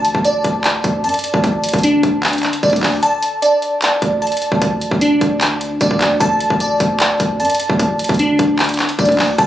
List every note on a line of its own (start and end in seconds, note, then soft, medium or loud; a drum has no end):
0.00 0.13 D2 loud
0.00 1.03 A5 loud
0.05 closed hi-hat medium
0.15 0.43 D2 loud
0.15 kick medium
0.25 2.62 D5 medium
0.25 closed hi-hat medium
0.44 0.83 D2 loud
0.44 kick medium
0.44 closed hi-hat medium
0.64 clap loud
0.64 closed hi-hat medium
0.84 1.06 D2 loud
0.84 kick medium
0.84 closed hi-hat medium
1.04 1.13 F#2 loud
1.04 3.01 A5 medium
1.04 closed hi-hat soft
1.09 closed hi-hat medium
1.14 closed hi-hat medium
1.19 closed hi-hat medium
1.24 closed hi-hat medium
1.34 1.72 D2 loud
1.34 kick medium
1.44 kick loud
1.44 closed hi-hat medium
1.64 closed hi-hat medium
1.69 closed hi-hat medium
1.74 2.02 D2 loud
1.74 kick medium
1.74 closed hi-hat medium
1.78 closed hi-hat soft
1.83 3.03 D4 medium
1.83 closed hi-hat medium
2.03 2.42 D2 loud
2.03 kick medium
2.03 closed hi-hat medium
2.23 clap loud
2.23 closed hi-hat soft
2.28 closed hi-hat medium
2.33 closed hi-hat medium
2.38 closed hi-hat medium
2.43 clap medium
2.43 closed hi-hat soft
2.53 closed hi-hat medium
2.63 2.82 D2 loud
2.63 3.03 D5 loud
2.63 kick medium
2.63 closed hi-hat soft
2.70 kick medium
2.70 closed hi-hat medium
2.76 closed hi-hat medium
2.83 3.02 D2 loud
2.83 clap loud
2.83 open hi-hat medium
3.03 4.21 A5 loud
3.03 closed hi-hat medium
3.23 closed hi-hat medium
3.42 5.80 D5 medium
3.42 closed hi-hat medium
3.62 closed hi-hat medium
3.82 clap loud
3.82 closed hi-hat medium
4.02 4.31 D2 loud
4.02 kick medium
4.02 closed hi-hat medium
4.22 6.19 A5 medium
4.22 closed hi-hat soft
4.27 closed hi-hat medium
4.32 closed hi-hat medium
4.37 closed hi-hat medium
4.42 closed hi-hat medium
4.52 4.61 D2 loud
4.52 kick medium
4.62 4.90 D2 loud
4.62 kick loud
4.62 closed hi-hat medium
4.81 closed hi-hat medium
4.91 5.20 D2 loud
4.91 kick medium
5.01 6.21 D4 medium
5.01 closed hi-hat medium
5.21 5.78 D2 loud
5.21 kick medium
5.21 closed hi-hat medium
5.41 clap loud
5.41 closed hi-hat medium
5.61 closed hi-hat medium
5.81 5.90 D2 loud
5.81 6.21 D5 medium
5.81 kick medium
5.81 closed hi-hat medium
5.91 6.00 D2 loud
5.91 kick medium
6.01 6.20 D2 loud
6.01 clap loud
6.01 closed hi-hat medium
6.20 6.49 D2 loud
6.20 7.39 A5 loud
6.20 kick loud
6.20 closed hi-hat medium
6.40 closed hi-hat medium
6.50 6.79 D2 medium
6.50 kick medium
6.60 8.98 D5 medium
6.60 closed hi-hat medium
6.80 7.18 D2 loud
6.80 kick medium
6.80 closed hi-hat medium
7.00 clap loud
7.00 closed hi-hat medium
7.20 7.41 D2 loud
7.20 kick medium
7.20 closed hi-hat medium
7.40 7.49 F#2 loud
7.40 9.37 A5 medium
7.40 closed hi-hat soft
7.45 closed hi-hat medium
7.50 closed hi-hat medium
7.55 closed hi-hat medium
7.60 closed hi-hat medium
7.70 8.08 D2 loud
7.70 kick medium
7.79 kick loud
7.79 closed hi-hat medium
7.99 closed hi-hat medium
8.04 closed hi-hat medium
8.09 8.38 D2 loud
8.09 kick medium
8.09 closed hi-hat medium
8.14 closed hi-hat soft
8.19 9.39 D4 medium
8.19 closed hi-hat medium
8.39 8.77 D2 loud
8.39 kick medium
8.39 closed hi-hat medium
8.59 clap loud
8.59 closed hi-hat soft
8.64 closed hi-hat medium
8.69 closed hi-hat medium
8.74 closed hi-hat medium
8.79 clap medium
8.79 closed hi-hat soft
8.89 closed hi-hat medium
8.99 9.18 D2 loud
8.99 9.39 D5 medium
8.99 kick medium
8.99 closed hi-hat soft
9.05 kick medium
9.05 closed hi-hat medium
9.12 closed hi-hat medium
9.19 9.38 D2 loud
9.19 clap loud
9.19 open hi-hat medium
9.38 9.47 D2 loud
9.38 9.47 A5 loud
9.38 kick loud
9.38 closed hi-hat medium